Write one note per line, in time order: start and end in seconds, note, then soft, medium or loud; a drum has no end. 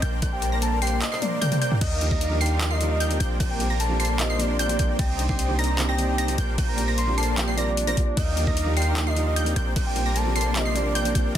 0.00 1.02 A#1 medium
0.00 1.78 C3 medium
0.00 4.95 G3 medium
0.00 8.13 A#3 medium
0.00 0.20 A#3 medium
0.00 1.77 D4 medium
0.00 0.20 A#4 medium
0.00 0.20 C5 medium
0.00 0.20 D5 medium
0.00 0.20 G5 medium
0.00 0.20 G6 medium
0.00 closed hi-hat medium
0.22 0.50 A#3 medium
0.22 0.50 A#4 medium
0.22 0.50 C5 medium
0.22 0.50 D5 medium
0.22 0.50 G5 medium
0.22 0.50 G6 medium
0.22 kick loud
0.22 closed hi-hat medium
0.32 0.58 G5 loud
0.42 closed hi-hat medium
0.52 0.80 A#3 medium
0.52 0.80 A#4 medium
0.52 0.80 C5 medium
0.52 0.80 D5 medium
0.52 0.80 A#5 medium
0.52 0.80 A#6 medium
0.62 0.79 A5 medium
0.62 closed hi-hat medium
0.82 1.10 A#3 medium
0.82 1.10 A#4 medium
0.82 1.10 C5 medium
0.82 1.10 D5 medium
0.82 0.99 G5 medium
0.82 1.10 C6 loud
0.82 1.09 C7 loud
0.82 closed hi-hat soft
0.87 closed hi-hat medium
1.02 1.19 D#5 medium
1.02 clap loud
1.02 closed hi-hat medium
1.12 1.39 A#3 loud
1.12 1.39 A#4 medium
1.12 1.39 C5 medium
1.12 1.39 D5 medium
1.12 1.39 C6 loud
1.12 1.39 C7 loud
1.12 clap soft
1.22 1.74 D5 loud
1.22 closed hi-hat medium
1.22 high tom medium
1.41 1.59 A#3 loud
1.41 1.59 A#4 medium
1.41 1.59 C5 medium
1.41 1.59 D5 medium
1.41 1.59 G5 loud
1.41 1.59 G6 loud
1.41 closed hi-hat medium
1.41 mid tom medium
1.52 closed hi-hat medium
1.52 mid tom medium
1.61 1.79 A#3 medium
1.61 1.79 A#4 medium
1.61 1.79 C5 medium
1.61 1.79 D5 medium
1.61 1.79 G5 medium
1.61 1.79 G6 medium
1.61 closed hi-hat medium
1.72 mid tom medium
1.81 3.18 D#2 medium
1.81 3.19 D4 medium
1.81 2.09 D#4 medium
1.81 3.19 D#4 medium
1.81 2.09 A#4 medium
1.81 2.09 D5 medium
1.81 2.07 D#5 loud
1.81 2.09 F5 medium
1.81 2.09 G5 medium
1.81 2.09 G6 medium
1.81 kick loud
1.81 closed hi-hat medium
1.81 crash medium
1.81 crash soft
2.00 2.12 F3 medium
2.00 2.12 A#3 medium
2.00 2.13 D4 medium
2.00 2.13 D#4 medium
2.00 2.13 G4 medium
2.00 closed hi-hat medium
2.11 2.39 D#4 medium
2.11 2.39 A#4 medium
2.11 2.39 D5 medium
2.11 2.37 D#5 loud
2.11 2.39 F5 medium
2.11 2.39 A#5 medium
2.11 2.39 A#6 medium
2.11 kick medium
2.21 closed hi-hat medium
2.30 2.42 F3 medium
2.30 2.42 A#3 medium
2.30 2.42 D4 medium
2.30 2.43 D#4 medium
2.30 2.43 G4 loud
2.41 2.69 D#4 medium
2.41 2.69 A#4 medium
2.41 2.69 D5 medium
2.41 2.69 F5 medium
2.41 2.72 G5 medium
2.41 2.69 C6 loud
2.41 2.68 C7 loud
2.41 closed hi-hat soft
2.46 closed hi-hat medium
2.60 2.72 F3 medium
2.60 2.72 A#3 medium
2.60 2.72 D4 medium
2.60 2.72 D#4 medium
2.60 2.73 G4 loud
2.60 clap loud
2.60 closed hi-hat medium
2.71 2.98 D#4 loud
2.71 2.98 A#4 medium
2.71 2.98 D5 medium
2.71 2.88 D#5 medium
2.71 2.98 F5 medium
2.71 2.98 C6 loud
2.71 2.98 C7 loud
2.80 3.07 F3 medium
2.80 3.08 A#3 medium
2.80 3.08 D4 medium
2.80 3.08 D#4 medium
2.80 3.09 G4 loud
2.80 closed hi-hat medium
2.91 3.16 D#5 loud
3.00 3.18 D#4 loud
3.00 3.18 A#4 medium
3.00 3.18 D5 medium
3.00 3.18 F5 medium
3.00 3.18 G5 loud
3.00 3.18 G6 loud
3.00 closed hi-hat medium
3.09 3.57 F3 medium
3.09 3.57 A#3 medium
3.09 3.58 C4 medium
3.09 3.58 D4 medium
3.09 3.59 G4 medium
3.09 closed hi-hat medium
3.20 4.77 A#1 medium
3.20 8.13 C3 medium
3.20 3.38 A#3 medium
3.20 4.97 D4 medium
3.20 3.38 A#4 medium
3.20 3.38 C5 medium
3.20 3.38 D5 medium
3.20 3.38 G5 medium
3.20 3.38 G6 medium
3.20 closed hi-hat medium
3.40 3.68 A#3 medium
3.40 3.68 A#4 medium
3.40 3.68 C5 medium
3.40 3.68 D5 medium
3.40 3.68 G5 medium
3.40 3.68 G6 medium
3.40 kick loud
3.40 closed hi-hat medium
3.40 crash soft
3.50 3.76 G5 medium
3.59 3.71 F3 medium
3.59 3.71 A#3 medium
3.59 3.71 C4 medium
3.59 3.72 D4 medium
3.59 3.72 G4 medium
3.59 closed hi-hat medium
3.70 3.97 A#3 medium
3.70 3.97 A#4 medium
3.70 3.98 C5 medium
3.70 3.98 D5 medium
3.70 3.97 A#5 medium
3.70 3.98 A#6 medium
3.80 3.97 A5 medium
3.80 closed hi-hat medium
3.89 4.01 F3 medium
3.89 4.01 A#3 medium
3.89 4.01 C4 medium
3.89 4.01 D4 medium
3.89 4.02 G4 loud
4.00 4.27 A#3 medium
4.00 4.27 A#4 medium
4.00 4.27 C5 medium
4.00 4.27 D5 medium
4.00 4.17 A5 medium
4.00 4.27 C6 loud
4.00 4.27 C7 loud
4.00 closed hi-hat medium
4.05 closed hi-hat medium
4.18 4.30 F3 medium
4.18 4.31 A#3 medium
4.18 4.31 C4 medium
4.18 4.31 D4 medium
4.18 4.31 G4 loud
4.18 4.41 D#5 medium
4.18 clap loud
4.18 closed hi-hat medium
4.30 4.57 A#3 loud
4.30 4.57 A#4 medium
4.30 4.57 C5 medium
4.30 4.57 D5 medium
4.30 4.57 C6 loud
4.30 4.57 C7 loud
4.38 4.66 F3 medium
4.38 4.67 A#3 medium
4.38 4.67 C4 medium
4.38 4.67 D4 medium
4.38 4.68 G4 loud
4.38 4.92 D5 loud
4.38 closed hi-hat medium
4.59 4.77 A#3 loud
4.59 4.77 A#4 medium
4.59 4.77 C5 medium
4.59 4.77 D5 medium
4.59 4.77 G5 loud
4.59 4.77 G6 loud
4.59 closed hi-hat medium
4.68 4.97 F3 medium
4.68 4.98 A#3 medium
4.68 4.98 C4 medium
4.68 4.98 D4 medium
4.68 4.98 G4 medium
4.68 closed hi-hat medium
4.79 4.97 A#3 medium
4.79 4.97 A#4 medium
4.79 4.97 C5 medium
4.79 4.97 D5 medium
4.79 4.97 G5 medium
4.79 4.97 G6 medium
4.79 kick medium
4.79 closed hi-hat medium
4.99 6.36 C2 medium
4.99 6.37 D#3 medium
4.99 5.27 C4 medium
4.99 8.14 D4 medium
4.99 5.27 C5 medium
4.99 5.27 D5 medium
4.99 5.27 D#5 medium
4.99 5.25 G5 loud
4.99 5.27 A#5 medium
4.99 5.27 A#6 medium
4.99 kick loud
4.99 closed hi-hat medium
4.99 crash soft
5.18 5.30 D#3 medium
5.18 5.30 A#3 medium
5.18 5.30 C4 medium
5.18 5.31 D4 medium
5.18 5.31 G4 medium
5.18 closed hi-hat medium
5.29 5.57 C4 medium
5.29 5.57 C5 medium
5.29 5.57 D5 medium
5.29 5.57 D#5 medium
5.29 5.54 G5 loud
5.29 5.57 C6 medium
5.29 5.56 C7 medium
5.29 kick medium
5.39 closed hi-hat medium
5.48 5.60 D#3 loud
5.48 5.60 A#3 medium
5.48 5.60 C4 medium
5.48 5.60 D4 medium
5.48 5.61 G4 loud
5.59 5.86 C4 loud
5.59 5.86 C5 medium
5.59 5.86 D5 medium
5.59 5.86 D#5 medium
5.59 5.86 A#5 loud
5.59 5.84 A#5 loud
5.59 5.86 A#6 loud
5.59 closed hi-hat soft
5.64 closed hi-hat medium
5.78 5.90 D#3 medium
5.78 5.90 A#3 medium
5.78 5.90 C4 medium
5.78 5.90 D4 medium
5.78 5.91 G4 loud
5.78 clap loud
5.78 closed hi-hat medium
5.89 6.16 C4 loud
5.89 6.16 C5 medium
5.89 6.16 D5 medium
5.89 6.16 D#5 medium
5.89 6.06 G5 medium
5.89 6.16 A#5 loud
5.89 6.16 A#6 loud
5.98 6.26 D#3 medium
5.98 6.26 A#3 medium
5.98 6.26 C4 medium
5.98 6.26 D4 medium
5.98 6.27 G4 loud
5.98 closed hi-hat medium
6.08 6.34 G5 loud
6.18 6.36 C4 loud
6.18 6.36 C5 medium
6.18 6.36 D5 medium
6.18 6.36 D#5 medium
6.18 6.36 A#5 loud
6.18 6.36 A#6 loud
6.18 closed hi-hat medium
6.27 6.75 F3 medium
6.27 6.75 A#3 medium
6.27 6.76 C4 medium
6.27 6.76 D4 medium
6.27 6.77 G4 loud
6.27 closed hi-hat medium
6.38 7.95 A#1 medium
6.38 9.53 G3 medium
6.38 6.56 A#3 medium
6.38 6.56 A#4 medium
6.38 6.56 C5 medium
6.38 6.56 D5 medium
6.38 6.56 G5 medium
6.38 6.56 G6 medium
6.38 closed hi-hat medium
6.58 6.86 A#3 medium
6.58 6.86 A#4 medium
6.58 6.86 C5 medium
6.58 6.86 D5 medium
6.58 6.86 G5 medium
6.58 6.86 G6 medium
6.58 kick loud
6.58 closed hi-hat medium
6.58 crash soft
6.68 6.94 A#5 loud
6.77 6.89 F3 medium
6.77 6.89 A#3 medium
6.77 6.89 C4 medium
6.77 6.90 D4 medium
6.77 6.90 G4 medium
6.77 closed hi-hat medium
6.88 7.15 A#3 medium
6.88 7.15 A#4 medium
6.88 7.15 C5 medium
6.88 7.15 D5 medium
6.88 7.16 A#5 medium
6.88 7.15 A#6 medium
6.98 7.15 C6 medium
6.98 closed hi-hat medium
7.07 7.19 F3 medium
7.07 7.19 A#3 medium
7.07 7.19 C4 medium
7.07 7.19 D4 medium
7.07 7.20 G4 loud
7.18 7.45 A#3 medium
7.18 7.45 A#4 medium
7.18 7.45 C5 medium
7.18 7.45 D5 medium
7.18 7.35 A5 medium
7.18 7.45 C6 loud
7.18 7.45 C7 loud
7.18 closed hi-hat soft
7.23 closed hi-hat medium
7.37 7.48 F3 medium
7.37 7.49 A#3 medium
7.37 7.49 C4 medium
7.37 7.49 D4 medium
7.37 7.50 G4 loud
7.37 7.55 G5 medium
7.37 clap loud
7.37 closed hi-hat medium
7.48 7.56 A#3 loud
7.48 7.56 A#4 medium
7.48 7.56 C5 medium
7.48 7.56 D5 medium
7.48 7.56 C6 loud
7.48 7.56 C7 loud
7.56 7.84 F3 medium
7.56 7.85 A#3 medium
7.56 7.71 A#3 medium
7.56 7.85 C4 medium
7.56 7.85 D4 medium
7.56 7.85 G4 loud
7.56 7.71 A#4 medium
7.56 7.71 C5 medium
7.56 8.19 D5 loud
7.56 7.71 D5 medium
7.56 7.71 A#5 medium
7.56 7.71 A#6 medium
7.56 closed hi-hat medium
7.77 closed hi-hat medium
7.86 8.15 F3 medium
7.86 8.16 A#3 medium
7.86 8.00 A#3 loud
7.86 8.16 C4 medium
7.86 8.16 D4 medium
7.86 8.16 G4 medium
7.86 8.00 A#4 medium
7.86 8.00 C5 medium
7.86 8.00 D5 medium
7.86 8.00 A#5 loud
7.86 8.00 A#6 loud
7.86 closed hi-hat medium
7.97 kick medium
7.97 closed hi-hat medium
8.17 9.54 D#2 loud
8.17 11.38 A#3 medium
8.17 9.55 D4 medium
8.17 9.55 D#4 medium
8.17 8.45 D#4 medium
8.17 8.45 A#4 medium
8.17 8.45 D5 medium
8.17 8.43 D#5 loud
8.17 8.45 F5 medium
8.17 8.45 G5 medium
8.17 8.45 G6 medium
8.17 kick loud
8.17 closed hi-hat medium
8.17 crash soft
8.36 8.48 F3 medium
8.36 8.48 A#3 medium
8.36 8.48 D4 medium
8.36 8.49 D#4 medium
8.36 8.49 G4 medium
8.36 closed hi-hat medium
8.47 8.74 D#4 medium
8.47 8.74 A#4 medium
8.47 8.74 D5 medium
8.47 8.72 D#5 medium
8.47 8.74 F5 medium
8.47 8.74 A#5 medium
8.47 8.74 A#6 medium
8.47 kick medium
8.57 closed hi-hat medium
8.66 8.78 F3 medium
8.66 8.78 A#3 medium
8.66 8.78 D4 medium
8.66 8.78 D#4 medium
8.66 8.79 G4 loud
8.76 9.04 D#4 medium
8.76 9.04 A#4 medium
8.76 9.04 D5 medium
8.76 9.04 F5 medium
8.76 9.08 G5 medium
8.76 9.04 C6 loud
8.76 9.04 C7 loud
8.76 closed hi-hat soft
8.82 closed hi-hat medium
8.96 9.08 F3 medium
8.96 9.08 A#3 medium
8.96 9.08 D4 medium
8.96 9.08 D#4 medium
8.96 9.09 G4 loud
8.96 clap loud
8.96 closed hi-hat medium
9.06 9.34 D#4 loud
9.06 9.34 A#4 medium
9.06 9.34 D5 medium
9.06 9.24 D#5 medium
9.06 9.34 F5 medium
9.06 9.34 C6 loud
9.06 9.34 C7 loud
9.16 9.43 F3 medium
9.16 9.44 A#3 medium
9.16 9.44 D4 medium
9.16 9.44 D#4 medium
9.16 9.45 G4 loud
9.16 closed hi-hat medium
9.27 9.52 D#5 loud
9.36 9.54 D#4 medium
9.36 9.54 A#4 medium
9.36 9.54 D5 medium
9.36 9.54 F5 medium
9.36 9.54 G5 loud
9.36 9.54 G6 loud
9.36 closed hi-hat medium
9.45 9.93 F3 medium
9.45 9.93 A#3 medium
9.45 9.94 C4 medium
9.45 9.94 D4 medium
9.45 9.95 G4 medium
9.45 closed hi-hat medium
9.56 11.13 A#1 medium
9.56 11.38 C3 medium
9.56 11.33 G3 medium
9.56 9.74 A#3 medium
9.56 11.38 D4 medium
9.56 9.74 A#4 medium
9.56 9.74 C5 medium
9.56 9.74 D5 medium
9.56 9.74 G5 medium
9.56 9.74 G6 medium
9.56 closed hi-hat medium
9.76 10.04 A#3 medium
9.76 10.04 A#4 medium
9.76 10.04 C5 medium
9.76 10.04 D5 medium
9.76 10.04 G5 medium
9.76 10.04 G6 medium
9.76 kick loud
9.76 closed hi-hat medium
9.76 crash soft
9.86 10.18 G5 loud
9.95 10.07 F3 medium
9.95 10.07 A#3 medium
9.95 10.07 C4 medium
9.95 10.08 D4 medium
9.95 10.08 G4 medium
9.95 closed hi-hat medium
10.06 10.33 A#3 medium
10.06 10.33 A#4 medium
10.06 10.33 C5 medium
10.06 10.33 D5 medium
10.06 10.33 A#5 medium
10.06 10.33 A#6 medium
10.16 10.33 A5 medium
10.16 closed hi-hat medium
10.25 10.37 F3 medium
10.25 10.37 A#3 medium
10.25 10.37 C4 medium
10.25 10.37 D4 medium
10.25 10.38 G4 loud
10.36 10.63 A#3 loud
10.36 10.63 A#4 medium
10.36 10.63 C5 medium
10.36 10.63 D5 medium
10.36 10.57 A5 medium
10.36 10.63 C6 loud
10.36 10.63 C7 loud
10.36 closed hi-hat soft
10.41 closed hi-hat medium
10.55 10.67 F3 medium
10.55 10.67 A#3 medium
10.55 10.67 C4 medium
10.55 10.67 D4 medium
10.55 10.68 G4 loud
10.55 10.73 D#5 medium
10.55 clap loud
10.55 closed hi-hat medium
10.65 10.93 A#3 loud
10.65 10.93 A#4 medium
10.65 10.93 C5 medium
10.65 10.93 D5 medium
10.65 10.93 C6 loud
10.65 10.93 C7 loud
10.75 11.03 F3 medium
10.75 11.03 A#3 medium
10.75 11.03 C4 medium
10.75 11.03 D4 medium
10.75 11.04 G4 loud
10.75 11.27 D5 loud
10.75 closed hi-hat medium
10.95 11.13 A#3 loud
10.95 11.13 A#4 medium
10.95 11.13 C5 medium
10.95 11.13 D5 medium
10.95 11.13 G5 loud
10.95 11.13 G6 loud
10.95 closed hi-hat medium
11.05 11.33 F3 medium
11.05 11.34 A#3 medium
11.05 11.34 C4 medium
11.05 11.34 D4 medium
11.05 11.35 G4 medium
11.05 closed hi-hat medium
11.15 11.33 A#3 medium
11.15 11.33 A#4 medium
11.15 11.33 C5 medium
11.15 11.33 D5 medium
11.15 11.33 G5 medium
11.15 11.33 G6 medium
11.15 kick medium
11.15 closed hi-hat medium